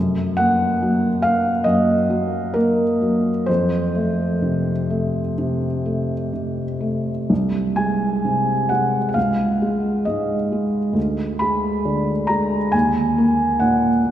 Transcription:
Already playing: F#2
0.37 A#3 F#5
0.82 F#3
1.22 A#3 F5
1.64 F#2 D#5
2.10 F#3
2.54 A#3 A#4
3.02 F#3
3.46 F2 C5
3.95 A3
4.42 C3
4.90 A3
5.38 C3
5.86 A3
6.33 C3
6.80 A3
7.30 C2
7.76 G#3 G#5
8.25 C3
8.69 G#3 F#5
9.09 F#5
9.14 C#2 F5
9.62 G#3
10.05 G#2 D#5
10.52 G#3
10.93 D2
11.39 G#3 B5
11.85 D3
12.27 G#3 A#5
12.72 D#2 G#5
13.18 A#3
13.60 A#2 F#5
14.04 A#3

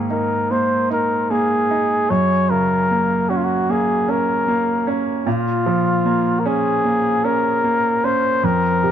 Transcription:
Already playing: G#2 D#3 A#3
0.10 D#4 A#4
0.51 A#3 C5
0.90 D#4 A#4
1.30 A#3 G#4
1.71 D#4
2.10 F#2 C#5
2.50 C#3 A#4
2.91 A#3
3.29 C#4 F#4
3.37 F4
3.44 F#4
3.69 A#3 G#4
4.08 C#4 A#4
4.48 A#3
4.87 C#4
5.27 A#2 F4
5.66 F3
6.05 A#3
6.39 A#4
6.46 C#4 G#4
6.85 A#3
7.24 C#4 A#4
7.64 A#3
8.04 C#4 C5
8.44 F2 A#4
8.83 C3

